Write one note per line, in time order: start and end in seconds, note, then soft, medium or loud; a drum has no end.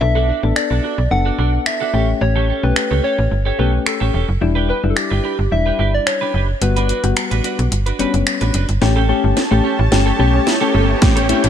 0.01 0.32 B1 loud
0.01 0.31 B3 medium
0.01 0.31 D4 medium
0.01 0.31 A4 medium
0.01 0.57 E5 loud
0.01 muted clean electric guitar stroke soft
0.15 0.27 D4 medium
0.15 0.28 F#4 medium
0.15 0.28 A4 medium
0.28 0.44 D4 medium
0.28 0.43 F#4 medium
0.28 0.42 A4 medium
0.43 0.53 A1 medium
0.43 0.92 B3 medium
0.43 0.92 D4 medium
0.43 0.92 A4 medium
0.43 muted clean electric guitar stroke soft
0.56 1.13 D5 loud
0.56 finger snap loud
0.56 muted clean electric guitar stroke soft
0.70 0.80 B1 medium
0.70 0.82 D4 soft
0.70 0.83 F#4 medium
0.70 0.84 A4 medium
0.83 1.03 D4 medium
0.83 0.98 F#4 medium
0.83 0.97 A4 medium
0.98 1.08 B1 medium
0.98 muted clean electric guitar stroke soft
1.11 1.31 F#1 medium
1.11 1.90 B3 medium
1.11 1.90 D4 medium
1.11 1.90 A4 medium
1.11 1.68 F#5 loud
1.11 muted clean electric guitar stroke soft
1.25 1.37 D4 medium
1.25 1.38 F#4 medium
1.25 1.39 A4 medium
1.38 1.59 B1 medium
1.38 1.58 D4 medium
1.38 1.53 F#4 medium
1.38 1.52 A4 loud
1.53 muted clean electric guitar stroke soft
1.66 2.23 E5 loud
1.66 finger snap loud
1.66 muted clean electric guitar stroke soft
1.80 1.93 D4 medium
1.80 1.94 F#4 medium
1.80 1.94 A4 medium
1.93 2.14 A1 medium
1.93 2.49 A3 medium
1.93 2.09 C#4 medium
1.93 2.49 C#4 medium
1.93 2.49 G4 medium
1.93 2.08 G4 medium
1.93 2.07 A4 medium
2.08 muted clean electric guitar stroke soft
2.21 2.52 A1 loud
2.21 2.65 C#5 loud
2.21 muted clean electric guitar stroke soft
2.36 2.47 C#4 medium
2.36 2.48 G4 medium
2.36 2.49 A4 medium
2.49 2.64 C#4 medium
2.49 2.63 G4 medium
2.49 2.62 A4 medium
2.63 2.73 B1 medium
2.63 3.32 A3 medium
2.63 3.32 C#4 medium
2.63 3.32 G4 medium
2.63 3.06 B4 medium
2.63 muted clean electric guitar stroke soft
2.76 finger snap loud
2.76 muted clean electric guitar stroke soft
2.91 3.00 C#2 medium
2.91 3.02 C#4 medium
2.91 3.03 G4 medium
2.91 3.04 A4 medium
3.03 3.23 C#4 medium
3.03 3.18 G4 medium
3.03 3.17 A4 medium
3.03 3.46 C#5 loud
3.18 3.28 A1 medium
3.18 muted clean electric guitar stroke medium
3.31 3.51 G1 medium
3.31 muted clean electric guitar stroke soft
3.45 3.57 C#4 soft
3.45 3.58 G4 medium
3.45 3.59 A4 medium
3.45 3.61 C#5 medium
3.58 3.79 B1 medium
3.58 4.18 A3 medium
3.58 3.78 C#4 medium
3.58 4.18 C#4 medium
3.58 4.18 G4 medium
3.58 3.73 G4 medium
3.58 3.72 A4 medium
3.58 3.86 B4 medium
3.73 muted clean electric guitar stroke soft
3.86 4.26 A4 medium
3.86 finger snap loud
3.86 muted clean electric guitar stroke soft
4.00 4.10 A1 medium
4.00 4.12 C#4 medium
4.00 4.13 G4 medium
4.00 4.13 A4 medium
4.13 4.25 E1 medium
4.13 4.29 C#4 medium
4.13 4.28 G4 medium
4.13 4.27 A4 medium
4.28 4.38 F#1 medium
4.28 muted clean electric guitar stroke soft
4.41 4.72 E1 loud
4.41 4.71 G3 medium
4.41 4.71 D4 medium
4.41 4.71 E4 loud
4.41 muted clean electric guitar stroke soft
4.55 4.67 D4 medium
4.55 4.68 G4 medium
4.55 4.68 B4 medium
4.68 4.84 D4 medium
4.68 4.83 G4 medium
4.68 4.89 B4 medium
4.68 4.82 B4 medium
4.83 4.93 F#1 medium
4.83 5.33 G3 medium
4.83 5.33 D4 medium
4.83 5.33 E4 medium
4.83 muted clean electric guitar stroke soft
4.90 4.99 A4 medium
4.96 5.54 G4 loud
4.96 finger snap loud
4.96 muted clean electric guitar stroke soft
5.10 5.21 G1 medium
5.10 5.22 D4 soft
5.10 5.23 G4 medium
5.10 5.24 B4 medium
5.23 5.43 D4 medium
5.23 5.38 G4 medium
5.23 5.37 B4 medium
5.38 5.48 G1 medium
5.38 muted clean electric guitar stroke soft
5.51 5.72 E1 medium
5.51 6.31 G3 medium
5.51 6.31 D4 medium
5.51 6.31 E4 medium
5.51 5.96 E5 loud
5.51 muted clean electric guitar stroke soft
5.66 5.78 D4 soft
5.66 5.78 G4 medium
5.66 5.79 B4 medium
5.79 5.99 G1 medium
5.79 5.98 D4 medium
5.79 5.93 G4 medium
5.79 5.92 B4 loud
5.94 6.08 D5 loud
5.94 muted clean electric guitar stroke soft
6.07 6.61 C#5 loud
6.07 finger snap loud
6.07 muted clean electric guitar stroke soft
6.21 6.33 D4 medium
6.21 6.34 G4 medium
6.21 6.34 B4 medium
6.34 6.54 F#1 medium
6.34 6.50 D4 medium
6.34 6.48 G4 medium
6.34 6.47 B4 medium
6.49 muted clean electric guitar stroke soft
6.61 6.92 G1 loud
6.61 6.91 G3 medium
6.61 6.91 B3 medium
6.61 6.91 F#4 medium
6.61 7.68 B4 loud
6.61 muted clean electric guitar stroke soft
6.61 closed hi-hat medium
6.76 6.88 D4 medium
6.76 6.89 F#4 medium
6.76 6.89 B4 medium
6.76 closed hi-hat soft
6.89 7.05 D4 medium
6.89 7.04 F#4 medium
6.89 7.03 B4 medium
6.89 closed hi-hat medium
7.04 7.13 G1 loud
7.04 7.72 G3 medium
7.04 7.72 B3 medium
7.04 7.72 F#4 medium
7.04 muted clean electric guitar stroke soft
7.04 closed hi-hat soft
7.17 finger snap loud
7.17 muted clean electric guitar stroke soft
7.17 closed hi-hat medium
7.31 7.41 A1 medium
7.31 7.43 D4 soft
7.31 7.43 F#4 medium
7.31 7.44 B4 medium
7.31 closed hi-hat medium
7.44 7.64 D4 medium
7.44 7.59 F#4 medium
7.44 7.58 B4 medium
7.44 closed hi-hat medium
7.59 7.68 B1 loud
7.59 muted clean electric guitar stroke soft
7.59 closed hi-hat soft
7.72 7.92 G1 medium
7.72 muted clean electric guitar stroke soft
7.72 closed hi-hat medium
7.86 7.98 D4 medium
7.86 7.99 F#4 medium
7.86 7.99 B4 medium
7.86 closed hi-hat medium
7.99 8.05 F#1 soft
7.99 8.59 G3 medium
7.99 8.59 B3 medium
7.99 8.59 C#4 loud
7.99 8.19 D4 medium
7.99 8.14 F#4 medium
7.99 8.13 B4 loud
7.99 closed hi-hat medium
8.14 8.23 F#1 medium
8.14 muted clean electric guitar stroke soft
8.14 closed hi-hat medium
8.27 finger snap loud
8.27 muted clean electric guitar stroke soft
8.27 closed hi-hat medium
8.41 8.51 A1 medium
8.41 8.53 D4 medium
8.41 8.54 F#4 medium
8.41 8.54 B4 medium
8.41 closed hi-hat soft
8.54 8.65 F#1 medium
8.54 8.70 D4 medium
8.54 8.68 F#4 medium
8.54 8.67 B4 medium
8.54 closed hi-hat medium
8.69 8.78 G1 medium
8.69 muted clean electric guitar stroke soft
8.69 closed hi-hat soft
8.81 9.12 A1 loud
8.81 9.02 A3 medium
8.81 8.91 A3 medium
8.81 9.02 C#4 medium
8.81 11.49 G4 medium
8.81 9.02 G4 medium
8.81 11.49 C#5 medium
8.81 11.00 A5 medium
8.81 muted clean electric guitar stroke soft
8.81 snare soft
8.81 riser medium
8.96 9.05 C#4 medium
8.96 9.08 C#4 medium
8.96 9.08 G4 medium
8.96 9.09 A4 medium
9.09 9.39 A3 medium
9.09 9.25 C#4 medium
9.09 9.39 C#4 medium
9.09 9.39 G4 loud
9.09 9.23 G4 medium
9.09 9.22 A4 medium
9.23 9.33 G1 medium
9.23 muted clean electric guitar stroke soft
9.36 9.46 A4 medium
9.36 muted clean electric guitar stroke soft
9.36 snare medium
9.51 9.61 A1 medium
9.51 9.81 A3 medium
9.51 9.60 A3 medium
9.51 9.81 C#4 medium
9.51 9.63 C#4 soft
9.51 9.81 G4 medium
9.51 9.63 G4 medium
9.51 9.64 A4 medium
9.64 9.84 C#4 medium
9.64 9.74 C#4 medium
9.64 9.78 G4 medium
9.64 9.77 A4 medium
9.79 9.88 A1 medium
9.79 9.88 E4 medium
9.79 muted clean electric guitar stroke medium
9.91 10.12 G1 medium
9.91 10.12 A3 medium
9.91 10.12 C#4 medium
9.91 10.12 G4 medium
9.91 10.02 G4 medium
9.91 muted clean electric guitar stroke soft
9.91 snare medium
10.06 10.18 C#4 medium
10.06 10.18 G4 medium
10.06 10.19 A4 medium
10.06 10.15 A4 loud
10.19 10.39 B1 medium
10.19 10.49 A3 medium
10.19 10.39 C#4 medium
10.19 10.49 C#4 medium
10.19 10.49 G4 loud
10.19 10.33 G4 medium
10.19 10.32 A4 medium
10.34 10.43 C#4 medium
10.34 muted clean electric guitar stroke soft
10.47 10.57 E4 medium
10.47 muted clean electric guitar stroke soft
10.47 snare medium
10.61 10.91 A3 medium
10.61 10.91 C#4 medium
10.61 10.72 C#4 medium
10.61 10.70 G4 medium
10.61 10.73 G4 medium
10.61 10.74 A4 medium
10.61 10.91 A4 medium
10.74 10.95 G1 medium
10.74 10.90 C#4 medium
10.74 10.88 G4 medium
10.74 10.84 A4 medium
10.74 10.87 A4 medium
10.88 10.98 A3 medium
10.88 muted clean electric guitar stroke soft
11.01 11.33 A1 loud
11.01 11.22 A3 medium
11.01 11.12 A3 medium
11.01 11.22 C#4 medium
11.01 11.22 G4 medium
11.01 11.49 G5 medium
11.01 muted clean electric guitar stroke soft
11.01 kick loud
11.01 snare medium
11.01 closed hi-hat medium
11.16 11.25 C#4 medium
11.16 11.28 C#4 medium
11.16 11.28 G4 medium
11.16 11.29 A4 medium
11.16 closed hi-hat soft
11.29 11.49 A3 medium
11.29 11.45 C#4 medium
11.29 11.49 C#4 medium
11.29 11.49 E4 medium
11.29 11.43 G4 medium
11.29 11.42 A4 medium
11.29 closed hi-hat medium
11.44 11.49 A1 loud
11.44 muted clean electric guitar stroke soft
11.44 closed hi-hat soft